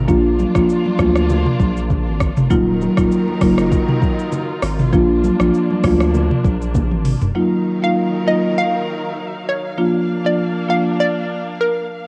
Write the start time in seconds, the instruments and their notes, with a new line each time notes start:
0.08 sub bass A#1, marimba F3 A#3 D4 F4, string section A#3 D4 F4, kick, low conga, shaker
0.39 high conga, shaker
0.55 sub bass A#1, marimba F3 A#3 D4 F4, kick, cross-stick, shaker
0.69 shaker
0.86 high conga
0.99 sub bass D2, marimba F3 A#3 D4 F4, kick, cross-stick, high conga, shaker
1.16 cross-stick, shaker
1.29 low conga, shaker
1.46 mid tom
1.60 sub bass A#1, kick, high conga, shaker
1.77 shaker
1.90 kick, low conga, shaker
2.07 sub bass G#1
2.20 kick, cross-stick, shaker
2.37 sub bass F1, mid tom, shaker
2.50 sub bass D#1, string section D#3 F#3 D#4 F4 A#4, marimba F#3 A#3 D#4 F4, kick, low conga, shaker
2.82 high conga, shaker
2.97 sub bass D#1, marimba F#3 A#3 D#4 F4, kick, cross-stick, shaker
3.12 shaker
3.28 high conga
3.41 sub bass F#1, marimba F#3 A#3 D#4 F4, kick, cross-stick, open hi-hat, high conga, shaker
3.58 cross-stick, shaker
3.72 kick, low conga, shaker
3.89 mid tom
4.02 kick, high conga, shaker
4.19 shaker
4.32 low conga, shaker
4.63 sub bass G#1, cross-stick, open hi-hat, shaker
4.79 mid tom, shaker
4.93 sub bass A#1, marimba F3 A#3 D4 F4, string section A#3 D4, kick, low conga, shaker
5.24 high conga, shaker
5.40 sub bass A#1, marimba F3 A#3 D4 F4, cross-stick, shaker
5.54 shaker
5.71 high conga
5.84 sub bass D2, marimba F3 A#3 D4 F4, kick, cross-stick, open hi-hat, high conga, low conga, shaker
6.00 cross-stick, shaker
6.14 low conga, shaker
6.31 mid tom
6.44 sub bass A#1, kick, high conga, shaker
6.62 shaker
6.75 kick, high tom, low conga, shaker
6.91 sub bass G#1, mid tom
7.05 mid tom, open hi-hat, shaker
7.22 sub bass F1, floor tom, shaker
7.35 string section D#3 F#3 D#4 A#4 F5, marimba F#3 A#3 D#4 F4
7.82 marimba F#3 A#3 D#4 F4, synth pluck F5
8.26 marimba F#3 A#3 D#4 F4, synth pluck D#5
8.58 synth pluck F5
9.49 synth pluck C#5
9.78 marimba F3 A#3 D4 F4, string section A#3 D4
10.24 marimba F3 A#3 D4 F4, synth pluck D5
10.68 marimba F3 A#3 D4 F4, synth pluck F5
11.00 synth pluck D5
11.61 synth pluck A#4